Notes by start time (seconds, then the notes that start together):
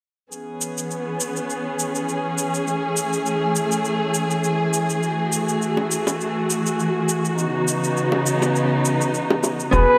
0.32 E3 B3 C#4 G#4, shaker
0.61 shaker
0.78 shaker
0.91 shaker
1.20 shaker
1.36 shaker
1.50 shaker
1.79 shaker
1.95 shaker
2.09 shaker
2.38 shaker
2.54 shaker
2.67 A3, shaker
2.97 shaker
3.13 shaker
3.26 shaker
3.56 shaker
3.72 shaker
3.85 shaker
4.14 shaker
4.31 shaker
4.44 shaker
4.74 shaker
4.90 shaker
5.02 A3 F#4, shaker
5.32 shaker
5.49 shaker
5.62 shaker
5.77 high bongo
5.91 shaker
6.07 high bongo, shaker
6.21 shaker
6.50 shaker
6.66 shaker
6.80 shaker
7.09 shaker
7.25 shaker
7.37 C#3 B3 D#4, shaker
7.68 shaker
7.84 shaker
7.97 shaker
8.12 high bongo
8.26 shaker
8.42 high bongo, shaker
8.56 shaker
8.85 shaker
9.01 shaker
9.14 shaker
9.30 high bongo
9.44 high bongo, shaker
9.60 shaker
9.71 E1 C#3 B3 C#4 E4 F#4 G#4 B4 G#5, kick, shaker